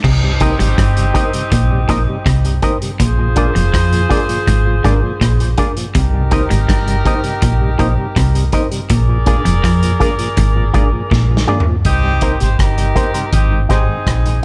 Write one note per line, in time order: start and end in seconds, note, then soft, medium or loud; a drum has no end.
0.04 0.53 C2 loud
0.04 0.26 C3 loud
0.04 2.59 C4 medium
0.04 2.59 D#4 medium
0.04 2.59 G4 medium
0.04 kick loud
0.04 crash loud
0.24 0.33 C3 medium
0.24 0.33 G3 medium
0.40 0.51 A#3 medium
0.40 0.51 C4 medium
0.40 0.55 D#4 loud
0.40 0.51 D#4 medium
0.40 0.54 G4 medium
0.40 0.56 A#4 medium
0.40 0.54 A#4 medium
0.40 0.56 C5 loud
0.40 0.54 D#5 loud
0.40 kick loud
0.40 closed hi-hat medium
0.59 0.77 G#1 medium
0.59 0.71 G#2 medium
0.59 0.69 C3 medium
0.59 0.69 G3 medium
0.59 closed hi-hat medium
0.78 1.11 G1 medium
0.78 1.00 G2 medium
0.78 kick loud
0.78 cross-stick loud
0.78 closed hi-hat medium
0.97 1.06 C3 medium
0.97 1.06 G3 medium
0.97 closed hi-hat medium
1.14 1.24 A#3 medium
1.14 1.25 C4 medium
1.14 1.30 D#4 medium
1.14 1.25 D#4 medium
1.14 1.27 G4 medium
1.14 1.28 A#4 medium
1.14 1.30 A#4 medium
1.14 1.30 C5 medium
1.14 1.28 D#5 loud
1.14 kick loud
1.14 closed hi-hat medium
1.33 1.43 C3 medium
1.33 1.43 G3 medium
1.33 closed hi-hat medium
1.52 1.85 A#1 medium
1.52 1.74 A#2 medium
1.52 kick loud
1.52 closed hi-hat loud
1.71 1.80 C3 medium
1.71 1.81 G3 medium
1.88 2.06 A#1 medium
1.88 2.00 A#2 medium
1.88 1.99 A#3 medium
1.88 1.99 C4 medium
1.88 2.03 D#4 medium
1.88 1.99 D#4 medium
1.88 2.01 G4 medium
1.88 2.02 A#4 medium
1.88 2.04 A#4 medium
1.88 2.04 C5 loud
1.88 2.02 D#5 loud
1.88 kick loud
1.88 cross-stick medium
1.88 closed hi-hat medium
2.09 2.18 C3 medium
2.09 2.18 G3 medium
2.26 2.59 C2 loud
2.26 2.48 C3 medium
2.26 kick loud
2.26 cross-stick loud
2.26 closed hi-hat medium
2.45 2.54 C3 medium
2.45 2.54 G3 medium
2.45 closed hi-hat soft
2.62 2.73 A#3 medium
2.62 2.73 C4 medium
2.62 2.77 D#4 medium
2.62 2.73 D#4 medium
2.62 2.75 G4 medium
2.62 2.77 A#4 medium
2.62 2.76 A#4 medium
2.62 2.78 C5 loud
2.62 2.76 D#5 loud
2.62 kick loud
2.62 closed hi-hat medium
2.82 2.91 C3 medium
2.82 2.91 G3 medium
2.82 closed hi-hat medium
3.00 3.49 A#1 loud
3.00 3.22 A#2 medium
3.00 5.55 F4 medium
3.00 5.55 G#4 medium
3.00 5.55 C5 loud
3.00 kick loud
3.00 closed hi-hat loud
3.19 3.28 A#2 medium
3.19 3.28 F3 medium
3.36 3.46 G#3 medium
3.36 3.47 A#3 medium
3.36 3.51 D4 loud
3.36 3.47 D4 medium
3.36 3.49 F4 medium
3.36 3.51 G#4 medium
3.36 3.50 G#4 medium
3.36 3.52 A#4 loud
3.36 3.50 D5 loud
3.36 kick loud
3.36 closed hi-hat medium
3.55 3.72 F1 medium
3.55 3.66 F2 medium
3.55 3.65 A#2 medium
3.55 3.65 F3 medium
3.55 closed hi-hat medium
3.74 4.07 F2 medium
3.74 3.96 F3 medium
3.74 kick loud
3.74 cross-stick loud
3.74 closed hi-hat loud
3.92 4.02 A#2 medium
3.92 4.02 F3 medium
3.92 closed hi-hat medium
4.09 4.20 G#3 medium
4.09 4.20 A#3 medium
4.09 4.25 D4 loud
4.09 4.20 D4 medium
4.09 4.23 F4 medium
4.09 4.23 G#4 medium
4.09 4.25 G#4 medium
4.09 4.26 A#4 loud
4.09 4.24 D5 loud
4.09 kick loud
4.09 closed hi-hat medium
4.29 4.39 A#2 medium
4.29 4.39 F3 medium
4.29 closed hi-hat medium
4.47 4.80 G#1 loud
4.47 4.70 G#2 medium
4.47 kick loud
4.47 closed hi-hat medium
4.67 4.76 A#2 medium
4.67 4.76 F3 medium
4.84 5.01 G#1 medium
4.84 4.96 G#2 medium
4.84 4.94 G#3 medium
4.84 4.94 A#3 medium
4.84 4.99 D4 loud
4.84 4.94 D4 medium
4.84 4.97 F4 medium
4.84 4.99 G#4 medium
4.84 4.97 G#4 medium
4.84 4.99 A#4 loud
4.84 4.98 D5 medium
4.84 kick medium
4.84 cross-stick medium
4.84 closed hi-hat medium
5.03 5.12 A#2 medium
5.03 5.13 F3 medium
5.21 5.54 A#1 medium
5.21 5.43 A#2 medium
5.21 kick loud
5.21 cross-stick loud
5.21 closed hi-hat medium
5.40 5.49 A#2 medium
5.40 5.49 F3 medium
5.40 closed hi-hat soft
5.57 5.67 G#3 medium
5.57 5.67 A#3 medium
5.57 5.72 D4 medium
5.57 5.68 D4 medium
5.57 5.71 F4 medium
5.57 5.73 G#4 medium
5.57 5.71 G#4 loud
5.57 5.73 A#4 loud
5.57 5.71 D5 loud
5.57 kick medium
5.57 closed hi-hat medium
5.77 5.86 A#2 medium
5.77 5.86 F3 medium
5.77 closed hi-hat medium
5.95 6.44 C2 loud
5.95 6.17 C3 loud
5.95 8.49 D#4 medium
5.95 8.50 G4 medium
5.95 8.49 A#4 loud
5.95 kick loud
5.95 closed hi-hat loud
6.13 6.23 C3 medium
6.13 6.23 G3 medium
6.31 6.41 A#3 medium
6.31 6.41 C4 medium
6.31 6.46 D#4 medium
6.31 6.41 D#4 medium
6.31 6.44 G4 medium
6.31 6.46 A#4 medium
6.31 6.45 A#4 loud
6.31 6.47 C5 loud
6.31 6.45 D#5 loud
6.31 kick loud
6.31 closed hi-hat medium
6.50 6.68 G#1 medium
6.50 6.61 G#2 medium
6.50 6.60 C3 medium
6.50 6.60 G3 medium
6.50 closed hi-hat medium
6.68 7.02 G1 medium
6.68 6.91 G2 medium
6.68 kick loud
6.68 cross-stick loud
6.68 closed hi-hat loud
6.86 6.96 C3 medium
6.86 6.96 G3 medium
6.86 closed hi-hat medium
7.05 7.15 A#3 medium
7.05 7.15 C4 medium
7.05 7.20 D#4 medium
7.05 7.15 D#4 medium
7.05 7.18 G4 medium
7.05 7.20 A#4 medium
7.05 7.19 A#4 medium
7.05 7.21 C5 medium
7.05 7.19 D#5 loud
7.05 kick loud
7.05 closed hi-hat medium
7.24 7.34 C3 medium
7.24 7.34 G3 medium
7.24 closed hi-hat medium
7.42 7.75 A#1 medium
7.42 7.65 A#2 medium
7.42 kick loud
7.42 closed hi-hat loud
7.61 7.71 C3 medium
7.61 7.71 G3 medium
7.79 7.96 A#1 medium
7.79 7.91 A#2 medium
7.79 7.89 A#3 medium
7.79 7.89 C4 medium
7.79 7.94 D#4 loud
7.79 7.89 D#4 medium
7.79 7.92 G4 medium
7.79 7.94 A#4 medium
7.79 7.92 A#4 medium
7.79 7.94 C5 loud
7.79 7.93 D#5 medium
7.79 kick medium
7.79 closed hi-hat medium
7.97 8.07 C3 medium
7.97 8.07 G3 medium
8.16 8.49 C2 loud
8.16 8.39 C3 medium
8.16 kick loud
8.16 cross-stick loud
8.16 closed hi-hat medium
8.35 8.44 C3 medium
8.35 8.44 G3 medium
8.35 closed hi-hat medium
8.52 8.63 A#3 medium
8.52 8.63 C4 medium
8.52 8.67 D#4 medium
8.52 8.63 D#4 medium
8.52 8.66 G4 medium
8.52 8.68 A#4 medium
8.52 8.66 A#4 medium
8.52 8.68 C5 loud
8.52 8.66 D#5 medium
8.52 kick medium
8.52 closed hi-hat medium
8.71 8.81 C3 medium
8.71 8.81 G3 medium
8.71 closed hi-hat medium
8.90 9.39 A#1 loud
8.90 9.12 A#2 medium
8.90 11.44 G#4 medium
8.90 11.44 A#4 medium
8.90 11.45 D5 loud
8.90 kick loud
8.90 closed hi-hat loud
9.08 9.18 A#2 medium
9.08 9.18 F3 medium
9.26 9.36 G#3 medium
9.26 9.36 A#3 medium
9.26 9.41 D4 medium
9.26 9.36 D4 medium
9.26 9.40 F4 medium
9.26 9.41 G#4 medium
9.26 9.40 G#4 medium
9.26 9.42 A#4 loud
9.26 9.40 D5 medium
9.26 kick loud
9.26 closed hi-hat medium
9.45 9.63 F1 medium
9.45 9.56 F2 medium
9.45 9.55 A#2 medium
9.45 9.55 F3 medium
9.45 closed hi-hat medium
9.64 9.97 F2 medium
9.64 9.86 F3 medium
9.64 kick loud
9.64 cross-stick loud
9.64 closed hi-hat medium
9.83 9.92 A#2 medium
9.83 9.92 F3 medium
9.83 closed hi-hat medium
10.00 10.10 G#3 medium
10.00 10.10 A#3 medium
10.00 10.15 D4 medium
10.00 10.10 D4 medium
10.00 10.13 F4 medium
10.00 10.13 G#4 medium
10.00 10.15 G#4 medium
10.00 10.15 A#4 loud
10.00 10.14 D5 loud
10.00 kick loud
10.00 closed hi-hat medium
10.19 10.29 A#2 medium
10.19 10.29 F3 medium
10.19 closed hi-hat medium
10.37 10.70 G#1 loud
10.37 10.60 G#2 medium
10.37 kick loud
10.37 closed hi-hat loud
10.55 10.65 A#2 medium
10.55 10.65 F3 medium
10.73 10.91 G#1 medium
10.73 10.86 G#2 medium
10.73 10.84 G#3 medium
10.73 10.84 A#3 medium
10.73 10.89 D4 loud
10.73 10.84 D4 medium
10.73 10.87 F4 medium
10.73 10.87 G#4 loud
10.73 10.89 G#4 medium
10.73 10.90 A#4 loud
10.73 10.87 D5 loud
10.73 kick medium
10.73 closed hi-hat medium
10.93 11.03 A#2 medium
10.93 11.03 F3 medium
11.11 11.44 A#1 loud
11.11 11.34 A#2 medium
11.11 kick loud
11.11 snare medium
11.30 11.39 A#2 medium
11.30 11.39 F3 medium
11.37 snare medium
11.47 11.58 G#3 medium
11.47 11.58 A#3 medium
11.47 11.63 D4 medium
11.47 11.58 D4 medium
11.47 11.61 F4 medium
11.47 11.61 G#4 medium
11.47 11.63 G#4 medium
11.47 11.63 A#4 loud
11.47 11.61 D5 loud
11.47 mid tom medium
11.60 floor tom loud
11.66 11.76 A#2 medium
11.66 11.76 F3 medium
11.85 12.34 C2 medium
11.85 12.38 C4 loud
11.85 12.37 D#4 loud
11.85 12.37 G4 loud
11.85 kick loud
11.85 closed hi-hat medium
12.03 12.13 C3 medium
12.03 12.13 G3 medium
12.21 12.32 A#3 medium
12.21 12.32 C4 medium
12.21 12.36 D#4 medium
12.21 12.35 D#4 medium
12.21 12.32 D#4 medium
12.21 12.37 A#4 medium
12.21 12.35 A#4 medium
12.21 12.37 C5 medium
12.21 12.36 C5 medium
12.21 kick loud
12.21 closed hi-hat medium
12.40 12.58 G#1 medium
12.40 12.50 C3 medium
12.40 12.50 G3 medium
12.40 12.55 D#4 medium
12.40 12.55 G4 medium
12.40 12.56 C5 medium
12.40 closed hi-hat medium
12.59 12.92 G1 medium
12.59 13.29 D#4 medium
12.59 13.29 G4 loud
12.59 13.29 A#4 loud
12.59 kick loud
12.59 cross-stick loud
12.59 closed hi-hat medium
12.77 12.87 C3 medium
12.77 12.87 G3 medium
12.77 closed hi-hat medium
12.95 13.05 A#3 medium
12.95 13.06 C4 medium
12.95 13.08 D#4 medium
12.95 13.10 D#4 medium
12.95 13.06 D#4 medium
12.95 13.09 A#4 medium
12.95 13.11 A#4 medium
12.95 13.11 C5 medium
12.95 13.09 C5 medium
12.95 kick loud
12.95 closed hi-hat medium
13.14 13.24 C3 medium
13.14 13.24 G3 medium
13.14 13.25 D#4 medium
13.14 13.25 A#4 medium
13.14 13.24 C5 medium
13.14 closed hi-hat soft
13.33 13.66 G#1 medium
13.33 13.62 C4 medium
13.33 13.62 D#4 medium
13.33 13.62 G4 medium
13.33 kick loud
13.33 closed hi-hat medium
13.51 13.61 G#2 soft
13.51 13.61 D#3 medium
13.69 13.87 G#1 medium
13.69 13.79 G#3 medium
13.69 14.40 C4 medium
13.69 13.80 C4 medium
13.69 13.82 D#4 medium
13.69 14.40 D#4 medium
13.69 13.84 G4 medium
13.69 13.83 G4 medium
13.69 13.80 G4 medium
13.69 14.40 G#4 medium
13.69 13.85 G#4 medium
13.69 13.83 C5 medium
13.69 13.85 C5 medium
13.69 kick medium
13.69 cross-stick medium
13.69 closed hi-hat medium
13.88 13.98 G#2 medium
13.88 13.98 D#3 medium
14.07 14.40 A#1 medium
14.07 kick loud
14.07 cross-stick medium
14.07 closed hi-hat medium
14.26 14.35 G#2 medium
14.26 14.35 D#3 medium
14.26 closed hi-hat soft